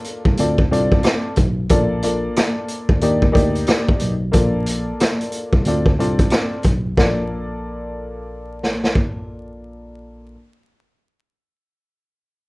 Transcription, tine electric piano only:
0, 0, Header, 1, 2, 480
1, 0, Start_track
1, 0, Key_signature, -2, "major"
1, 0, Tempo, 659341
1, 1238, Time_signature, 4, 2, 24, 8
1, 9088, End_track
2, 0, Start_track
2, 0, Title_t, "Tine electric piano"
2, 0, Program_c, 0, 4
2, 184, Note_on_c, 0, 36, 87
2, 266, Note_off_c, 0, 36, 0
2, 282, Note_on_c, 0, 38, 98
2, 492, Note_off_c, 0, 38, 0
2, 520, Note_on_c, 0, 36, 98
2, 731, Note_off_c, 0, 36, 0
2, 1002, Note_on_c, 0, 35, 96
2, 1211, Note_off_c, 0, 35, 0
2, 1239, Note_on_c, 0, 34, 109
2, 1661, Note_off_c, 0, 34, 0
2, 2104, Note_on_c, 0, 38, 75
2, 2186, Note_off_c, 0, 38, 0
2, 2200, Note_on_c, 0, 39, 102
2, 2410, Note_off_c, 0, 39, 0
2, 2440, Note_on_c, 0, 38, 95
2, 2651, Note_off_c, 0, 38, 0
2, 2920, Note_on_c, 0, 35, 98
2, 3130, Note_off_c, 0, 35, 0
2, 3159, Note_on_c, 0, 34, 112
2, 3581, Note_off_c, 0, 34, 0
2, 4024, Note_on_c, 0, 36, 85
2, 4106, Note_off_c, 0, 36, 0
2, 4119, Note_on_c, 0, 38, 100
2, 4330, Note_off_c, 0, 38, 0
2, 4361, Note_on_c, 0, 36, 94
2, 4571, Note_off_c, 0, 36, 0
2, 4840, Note_on_c, 0, 35, 91
2, 5050, Note_off_c, 0, 35, 0
2, 5079, Note_on_c, 0, 34, 97
2, 7532, Note_off_c, 0, 34, 0
2, 9088, End_track
0, 0, End_of_file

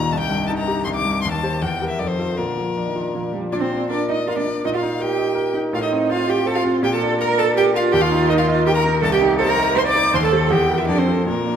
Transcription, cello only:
0, 0, Header, 1, 2, 480
1, 0, Start_track
1, 0, Key_signature, -2, "major"
1, 0, Tempo, 377834
1, 144, Time_signature, 3, 2, 24, 8
1, 4945, Tempo, 366972
1, 12625, Tempo, 378072
1, 14908, End_track
2, 0, Start_track
2, 0, Title_t, "Cello"
2, 0, Program_c, 0, 42
2, 0, Note_on_c, 0, 51, 53
2, 1507, Note_off_c, 0, 51, 0
2, 1553, Note_on_c, 0, 51, 45
2, 2039, Note_on_c, 0, 52, 43
2, 2058, Note_off_c, 0, 51, 0
2, 2522, Note_on_c, 0, 51, 43
2, 2541, Note_off_c, 0, 52, 0
2, 2993, Note_on_c, 0, 50, 36
2, 3012, Note_off_c, 0, 51, 0
2, 3439, Note_off_c, 0, 50, 0
2, 3494, Note_on_c, 0, 53, 39
2, 3543, Note_off_c, 0, 53, 0
2, 3598, Note_on_c, 0, 51, 37
2, 3954, Note_off_c, 0, 51, 0
2, 3962, Note_on_c, 0, 53, 42
2, 4063, Note_off_c, 0, 53, 0
2, 4205, Note_on_c, 0, 55, 45
2, 4448, Note_off_c, 0, 55, 0
2, 4455, Note_on_c, 0, 62, 62
2, 4573, Note_on_c, 0, 60, 57
2, 4592, Note_off_c, 0, 62, 0
2, 4928, Note_off_c, 0, 60, 0
2, 4935, Note_on_c, 0, 62, 71
2, 5035, Note_off_c, 0, 62, 0
2, 5199, Note_on_c, 0, 63, 71
2, 5295, Note_off_c, 0, 63, 0
2, 5436, Note_on_c, 0, 65, 70
2, 5484, Note_off_c, 0, 65, 0
2, 5562, Note_on_c, 0, 62, 53
2, 5667, Note_off_c, 0, 62, 0
2, 5935, Note_on_c, 0, 63, 70
2, 5978, Note_off_c, 0, 63, 0
2, 6049, Note_on_c, 0, 65, 65
2, 6153, Note_off_c, 0, 65, 0
2, 6401, Note_on_c, 0, 67, 73
2, 7096, Note_off_c, 0, 67, 0
2, 7353, Note_on_c, 0, 65, 75
2, 7460, Note_off_c, 0, 65, 0
2, 7466, Note_on_c, 0, 63, 78
2, 7832, Note_on_c, 0, 65, 84
2, 7852, Note_off_c, 0, 63, 0
2, 8081, Note_on_c, 0, 67, 76
2, 8100, Note_off_c, 0, 65, 0
2, 8312, Note_on_c, 0, 69, 89
2, 8331, Note_off_c, 0, 67, 0
2, 8430, Note_on_c, 0, 65, 72
2, 8449, Note_off_c, 0, 69, 0
2, 8773, Note_off_c, 0, 65, 0
2, 8781, Note_on_c, 0, 67, 86
2, 8830, Note_off_c, 0, 67, 0
2, 8924, Note_on_c, 0, 69, 89
2, 9270, Note_off_c, 0, 69, 0
2, 9280, Note_on_c, 0, 70, 101
2, 9512, Note_on_c, 0, 69, 98
2, 9531, Note_off_c, 0, 70, 0
2, 9739, Note_off_c, 0, 69, 0
2, 9747, Note_on_c, 0, 67, 94
2, 9983, Note_off_c, 0, 67, 0
2, 10001, Note_on_c, 0, 65, 92
2, 10221, Note_on_c, 0, 67, 100
2, 10241, Note_off_c, 0, 65, 0
2, 10339, Note_on_c, 0, 65, 94
2, 10358, Note_off_c, 0, 67, 0
2, 10693, Note_on_c, 0, 63, 91
2, 10712, Note_off_c, 0, 65, 0
2, 10819, Note_on_c, 0, 65, 91
2, 10839, Note_off_c, 0, 63, 0
2, 11174, Note_off_c, 0, 65, 0
2, 11181, Note_on_c, 0, 67, 91
2, 11230, Note_off_c, 0, 67, 0
2, 11295, Note_on_c, 0, 70, 94
2, 11643, Note_off_c, 0, 70, 0
2, 11651, Note_on_c, 0, 69, 95
2, 11702, Note_off_c, 0, 69, 0
2, 11773, Note_on_c, 0, 67, 93
2, 12118, Note_off_c, 0, 67, 0
2, 12126, Note_on_c, 0, 69, 106
2, 12178, Note_off_c, 0, 69, 0
2, 12245, Note_on_c, 0, 70, 101
2, 12596, Note_off_c, 0, 70, 0
2, 12604, Note_on_c, 0, 72, 95
2, 12656, Note_off_c, 0, 72, 0
2, 12736, Note_on_c, 0, 74, 89
2, 13086, Note_off_c, 0, 74, 0
2, 13092, Note_on_c, 0, 72, 95
2, 13140, Note_off_c, 0, 72, 0
2, 13219, Note_on_c, 0, 69, 94
2, 13577, Note_on_c, 0, 67, 78
2, 13596, Note_off_c, 0, 69, 0
2, 13930, Note_on_c, 0, 64, 80
2, 13949, Note_off_c, 0, 67, 0
2, 14030, Note_off_c, 0, 64, 0
2, 14037, Note_on_c, 0, 62, 78
2, 14169, Note_on_c, 0, 60, 74
2, 14188, Note_off_c, 0, 62, 0
2, 14536, Note_off_c, 0, 60, 0
2, 14545, Note_on_c, 0, 58, 69
2, 14908, Note_off_c, 0, 58, 0
2, 14908, End_track
0, 0, End_of_file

